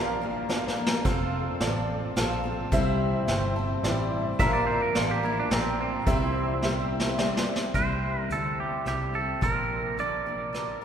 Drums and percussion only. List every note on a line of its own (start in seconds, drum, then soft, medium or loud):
0.49 snare medium
0.68 snare medium
0.86 snare loud
1.05 kick loud
1.05 closed hi-hat medium
1.60 snare medium
1.60 closed hi-hat medium
2.17 snare medium
2.17 closed hi-hat medium
2.72 kick loud
2.72 closed hi-hat medium
3.28 snare medium
3.28 closed hi-hat medium
3.84 snare medium
3.84 closed hi-hat medium
4.40 kick loud
4.40 closed hi-hat medium
4.95 snare medium
4.95 closed hi-hat medium
5.51 snare medium
5.51 closed hi-hat medium
6.07 kick loud
6.07 closed hi-hat medium
6.62 snare medium
7.00 snare medium
7.19 snare medium
7.37 snare loud
7.56 snare medium
7.74 kick loud
7.74 closed hi-hat medium
8.30 closed hi-hat medium
8.86 cross-stick medium
8.86 closed hi-hat medium
9.42 kick loud
9.42 closed hi-hat medium
9.98 closed hi-hat medium
10.54 cross-stick medium
10.54 closed hi-hat medium